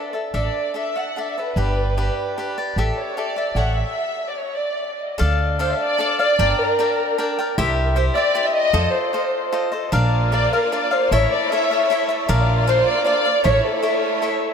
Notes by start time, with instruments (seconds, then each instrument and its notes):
Already playing: cavaquinho D4 A4 D5 E5, violin section A4
0.13 cavaquinho A4 D5 E5
0.34 upright bass A1, cavaquinho D4 A4 D5 E5, violin section D5
0.74 cavaquinho D4 A4 D5 E5, violin section E5
0.95 cavaquinho A4 D5 E5, violin section F#5
1.16 cavaquinho D4 A4 D5 E5, violin section E5
1.38 cavaquinho A4 D5 E5, violin section B4
1.56 upright bass G1, cavaquinho D4 G4 B4 D5
1.97 cavaquinho D4 G4 B4 D5
2.37 cavaquinho D4 G4 B4 D5
2.58 cavaquinho G4 B4 D5
2.76 upright bass A1, cavaquinho G4 A4 D5 E5, violin section A4
2.97 violin section C#5
3.17 cavaquinho G4 A4 D5 E5, violin section D5
3.36 cavaquinho A4 D5 E5
3.55 upright bass A1, cavaquinho G4 A4 C#5 E5, violin section F#5
3.76 violin section E5
4.28 violin section D5
4.38 violin section C#5
4.56 violin section D5
5.18 upright bass D2, cavaquinho D4 A4 D5 F5
5.59 cavaquinho D4 A4 D5 F5, violin section C5
5.72 violin section E5
5.81 violin section D5
5.98 cavaquinho D4 A4 D5 F5
6.19 cavaquinho A4 D5 F5, violin section D5
6.39 upright bass G1, cavaquinho D4 A#4 D5 G5
6.60 violin section A#4
6.79 cavaquinho D4 A#4 D5 G5
7.18 cavaquinho D4 A#4 D5 G5
7.39 cavaquinho A#4 D5 G5
7.58 upright bass C2, cavaquinho E4 G4 C5 E5
7.95 cavaquinho E4 G4 C5 E5, violin section C5
8.14 cavaquinho G4 C5 E5, violin section D5
8.35 cavaquinho E4 G4 C5 E5
8.46 violin section E5
8.52 violin section D#5
8.73 upright bass F2, cavaquinho F4 A4 C5 D#5
8.93 violin section C5
9.13 cavaquinho F4 A4 C5 D#5
9.53 cavaquinho F4 A4 C5 D#5
9.72 cavaquinho A4 C5 D#5
9.91 upright bass A#1, violin section A#3 F4 D5, cavaquinho D4 A#4 D5 F5
10.32 cavaquinho D4 A#4 D5 F5, violin section D5
10.53 violin section A#4, cavaquinho A#4 D5 F5
10.63 violin section A#4
10.72 cavaquinho D4 A#4 D5 F5, violin section D5
10.91 cavaquinho A#4 D5 F5, violin section C5
11.11 upright bass A1, violin section A3 E4 C#5, cavaquinho E4 A4 C#5 E5
11.32 violin section D5
11.51 cavaquinho E4 A4 C#5 E5, violin section E5
11.71 cavaquinho A4 C#5 E5
11.90 cavaquinho E4 A4 C#5 E5
12.09 cavaquinho A4 C#5 E5
12.27 upright bass A#1, violin section A#3 F4 D5, cavaquinho D4 A#4 D5 F5
12.67 cavaquinho D4 A#4 D5 F5, violin section C5
12.87 violin section D5
13.05 cavaquinho D4 A#4 D5 F5, violin section D5
13.25 cavaquinho A#4 D5 F5
13.43 upright bass A1, violin section A3 E4 C#5, cavaquinho E4 A4 C#5 E5
13.64 violin section A4
13.82 cavaquinho E4 A4 C#5 E5
14.22 cavaquinho E4 A4 C#5 E5